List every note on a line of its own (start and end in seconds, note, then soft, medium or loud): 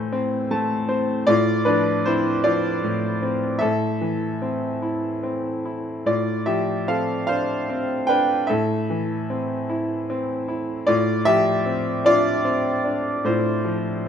0.00 1.23 A2 medium
0.00 0.86 E3 soft
0.00 0.49 A3 soft
0.00 0.48 E4 soft
0.00 0.47 C5 medium
0.12 0.87 C4 medium
0.51 1.25 A3 medium
0.51 0.87 A5 medium
0.88 1.26 C4 soft
0.88 1.25 C5 medium
1.27 2.82 A2 medium
1.27 1.64 F4 medium
1.27 1.67 D5 medium
1.65 2.43 F3 medium
1.65 2.02 D4 medium
1.65 2.02 B4 medium
2.05 3.21 C4 soft
2.05 2.42 E4 medium
2.05 2.42 C5 medium
2.44 3.58 F3 medium
2.44 3.18 F4 medium
2.44 3.18 D5 medium
2.83 3.60 A2 soft
3.22 3.61 C4 soft
3.59 6.02 A2 medium
3.59 4.78 A4 medium
3.59 4.76 E5 medium
4.01 5.60 E3 soft
4.42 5.22 C4 soft
4.82 5.64 E4 soft
5.23 6.03 C4 soft
5.65 6.05 E4 soft
6.06 8.45 A2 medium
6.06 6.45 F4 soft
6.06 6.49 D5 medium
6.46 8.05 F3 soft
6.46 6.85 G4 medium
6.46 6.89 E5 medium
6.88 7.68 C4 soft
6.88 7.26 A4 medium
6.88 7.25 F5 medium
7.27 8.08 D4 soft
7.27 8.05 C5 medium
7.27 8.04 F5 medium
7.69 8.47 C4 soft
8.07 8.48 D4 soft
8.07 8.46 B4 medium
8.07 8.49 G5 medium
8.47 10.84 A2 medium
8.47 10.05 A4 medium
8.47 10.04 E5 medium
8.90 10.45 E3 soft
9.30 10.08 C4 soft
9.69 10.47 E4 soft
10.10 10.86 C4 medium
10.48 10.86 E4 soft
10.87 13.21 A2 medium
10.87 11.24 F4 medium
10.87 11.23 D5 medium
11.25 12.80 F3 soft
11.25 12.01 G4 medium
11.25 12.01 E5 loud
11.66 12.43 C4 soft
12.04 12.83 D4 medium
12.04 13.21 F4 medium
12.04 13.29 D5 loud
12.45 14.02 C4 medium
12.84 14.08 D4 soft
13.24 14.08 A2 medium
13.24 14.08 F4 medium
13.24 14.08 C5 medium
13.65 14.08 F3 soft